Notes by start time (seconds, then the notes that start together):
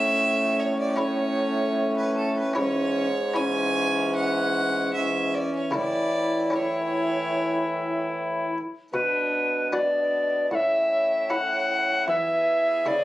Already playing: A2 A3 C#4 E4 A4 E5
0.60 C#5
0.80 D5
0.96 A3 C#4 E4 A4 C#5
1.98 B4
2.17 A4
2.38 B4
2.53 G#2 C#4 E4 C#5
2.58 G#2 E3
3.34 E3 C#4 E4 C#5 G#5
4.16 F#5
4.94 E3 C#4 E5
5.34 D5
5.57 C#5
5.71 A2 C#3 E3 E4 A4
5.75 E4 D5
6.50 E3 C#4 E4 A4
6.55 E4 C#5
8.93 B2 B3 D4 B4
9.72 B3 D4 F#4 D5
10.51 A2 C#4 E4 E5 F#5
11.30 C#4 E4 A4 F#5
12.07 E3 B3 G#4 E5
12.86 C#3 B3 E4 G#4 D5